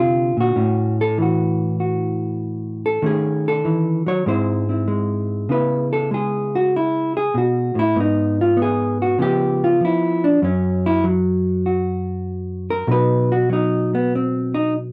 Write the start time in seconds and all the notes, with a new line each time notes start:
Already playing: C3 D3 G#3 C4
0.00 F4
0.37 A#2 F#4
0.56 A2 C#4
1.01 A4
1.18 E3
1.22 F#4
1.80 F#4
2.86 A4
3.02 D#3 A3 C#4 G#4
3.48 A4
3.65 E3
4.06 F#3 C#5
4.26 G#2 G#3 C4 E4 C5
4.69 C4 E4
4.88 G#3
5.49 C#3 B3 E4 B4
5.93 A4
6.11 G#3 G#4
6.55 F#4
6.76 E4
7.17 G#4
7.34 B2 F#4
7.75 A2 E4
7.96 G#2 B3
8.00 D#4
8.41 F4
8.57 B3
8.62 G#4
9.02 F#4
9.19 C#3 F3 B3 G4
9.64 F4
9.81 F3
9.85 E4
10.24 D4
10.42 F#2 F#3 C#4
10.86 E4
11.04 F#3
11.66 F#4
12.70 A#4
12.87 B2 F#3 D#4
12.91 B4
13.32 F#4
13.49 F#3 D#4
13.95 B3
14.15 C4
14.54 D#4